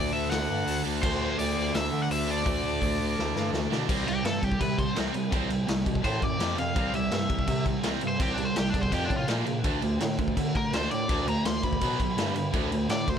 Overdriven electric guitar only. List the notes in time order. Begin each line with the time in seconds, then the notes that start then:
Already playing: D5
0.13 E5
0.31 F#5
1.03 C5
1.39 D5
1.75 E5
2.03 F#5
2.12 E5
2.30 D5
4.09 G4
4.26 A4
4.44 G4
4.61 B4
4.79 C5
6.05 C5
6.23 D5
6.59 F5
6.96 E5
8.08 C5
8.22 G4
8.34 D4
8.45 C5
8.57 G4
8.70 D4
8.81 C5
8.92 G4
9.05 D4
9.17 F4
10.57 A#4
10.74 C5
10.91 D5
11.29 A#5
11.46 C6
11.64 B5
12.91 D5
13.09 C5